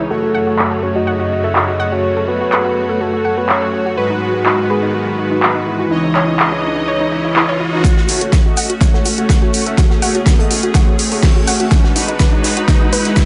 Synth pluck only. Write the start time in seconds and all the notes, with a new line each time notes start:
0.10 F#4
0.23 F#4
0.34 F#5
0.47 F#4
0.71 A4
0.83 F#4
0.95 F#4
1.07 F#5
1.20 F#4
1.44 A4
1.55 F#4
1.68 F#4
1.80 F#5
1.92 F#4
2.16 A4
2.28 F#4
2.41 F#4
2.52 F#5
2.65 F#4
2.89 A4
3.01 F#4
3.13 F#4
3.25 F#5
3.37 F#4
3.62 A4
3.73 F#4
3.86 F#4
3.97 B4
4.10 D#4
4.34 F#4
4.46 D#4
4.58 D#4
4.70 B4
4.83 D#4
5.07 F#4
5.18 D#4
5.31 D#4
5.43 B4
5.55 D#4
5.79 F#4
5.91 D#4
6.04 D#4
6.15 C#5
6.28 D#4
6.52 E4
6.64 D#4
6.76 D#4
6.88 C#5
7.00 D#4
7.12 D#4
7.25 E4
7.36 E4
7.49 C#5
7.60 E4
7.73 D#4
7.85 F#5
7.97 F#4
8.21 A4
8.33 F#4
8.46 F#4
8.57 F#5
8.70 F#4
8.94 A4
9.06 F#4
9.18 F#4
9.30 F#5
9.42 F#4
9.66 A4
9.78 F#4
9.91 F#4
10.02 F#5
10.15 F#4
10.39 A4
10.51 F#4
10.63 F#4
10.75 F#5
10.87 F#4
11.12 A4
11.23 F#4
11.36 F#4
11.47 F#5
11.60 F#4
11.84 F#4
11.96 D#4
12.08 D#4
12.20 B4
12.33 D#4
12.57 F#4
12.68 D#4
12.81 D#4
12.93 B4
13.05 D#4